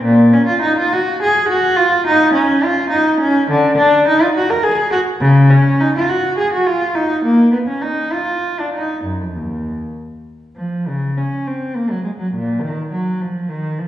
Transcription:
cello
0.03 A#2
0.33 C#4
0.46 F4
0.62 D#4
0.78 F4
0.93 F#4
1.22 G#4
1.49 F#4
1.76 F4
2.07 D#4
2.34 C#4
2.64 F4
2.90 D#4
3.20 C#4
3.51 D3
3.78 D4
4.08 D#4
4.22 F4
4.34 F#4
4.50 A#4
4.64 G#4
4.91 F#4
5.21 C#3
5.50 C#4
5.81 D#4
5.96 F4
6.09 F#4
6.38 G#4
6.53 F#4
6.66 F4
6.95 D#4
7.24 A#3
7.52 B3
7.68 C#4
7.82 D#4
8.12 F4
8.60 D4
8.74 D#4
9.04 F#2
9.21 F2
9.36 D#2
10.57 F3
10.88 C#3
11.17 C#4
11.47 C4
11.76 A#3
11.91 F#3
12.04 G#3
12.19 F#3
12.34 A#2
12.62 D#3
12.92 F#3
13.21 F3
13.49 D#3
13.79 F3

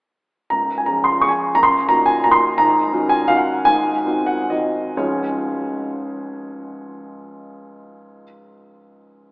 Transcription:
grand piano
0.50 C#1 C#2 A#5
0.78 G#5
0.86 F3 C#4 G#4 A#5
1.04 C6
1.22 F3 C#4 G#4 C#6
1.29 G#5
1.55 F#1 F#2 A#5
1.63 C6
1.89 D#3 A#3 F#4 A#5
2.06 G#5
2.24 D#3 A#3 F#4 A#5
2.31 C6
2.58 G#1 G#2 A#5
2.93 D#3 C#4 F#4
3.09 G#5
3.28 D#3 C#4 F#4 F5
3.37 F#5
3.65 G#1 G#2 G#5
4.06 D#3 C4 F#4
4.26 F#5
4.50 D#3 C4 F#4 D#5
4.97 C#2 G#2 F3 G#3 C#4 F4 C#5

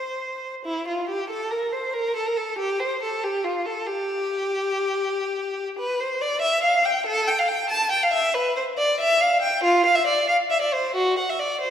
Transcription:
violin
Already playing: C5
0.66 E4
0.88 F4
1.09 G4
1.30 A4
1.51 A#4
1.73 C5
1.94 A#4
2.16 A4
2.27 A#4
2.37 A4
2.59 G4
2.80 C5
3.03 A4
3.24 G4
3.44 F4
3.66 A4
3.88 G4
5.79 B4
6.01 C5
6.22 D5
6.42 E5
6.63 F5
6.85 G5
7.07 A4
7.28 G5
7.39 F5
7.48 G5
7.70 A5
7.91 G5
8.03 F5
8.13 E5
8.34 B4
8.57 C5
8.78 D5
9.01 E5
9.21 F5
9.42 G5
9.64 F4
9.85 F5
9.96 E5
10.07 D5
10.28 F5
10.50 E5
10.62 D5
10.73 C5
10.96 F#4
11.18 F#5
11.30 E5
11.39 D5
11.61 C5

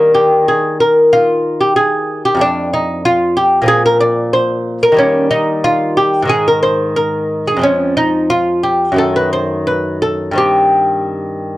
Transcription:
lute
Already playing: D#3 G3 A#3 A#4
0.14 G4
0.48 G#4
0.80 A#4
1.13 F4
1.61 G4
1.76 G#4
2.25 G4
2.35 F2 F3
2.39 A3 D4
2.74 D#4
3.05 F4
3.37 G4
3.62 A#2 F3
3.66 A#3 G#4
3.86 A#4
4.01 D5
4.33 C5
4.83 A#4
4.92 D#3 G3
4.97 A#3 C#4
5.31 D#4
5.64 F4
5.97 G4
6.22 G#2 D#3
6.28 G#3 G#4
6.48 A#4
6.63 C5
6.96 A#4
7.47 G#4
7.57 F2 F3
7.61 G#3 C#4
7.97 D#4
8.30 F4
8.63 G4
8.92 F#2 D#3
8.96 A3 A4
9.16 B4
9.33 C5
9.67 B4
10.02 A4
10.31 G2 D#3
10.35 C4 G4

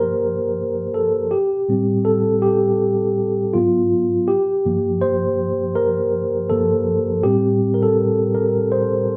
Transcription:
tine electric piano
Already playing: G2 F3 A#3 G4 A#4 C5
0.94 A4
1.31 G4
1.69 A2 G3 C4
2.05 A4
2.42 G4
3.54 G#2 F#3 B3 F4
4.28 G4
4.65 G2 F3 A#3
5.01 C5
5.75 A#4
6.50 G2 F3 A#3 A4
7.23 A2 G3 C4 G4
7.74 A#4
7.83 A4
8.35 A#4
8.72 C5

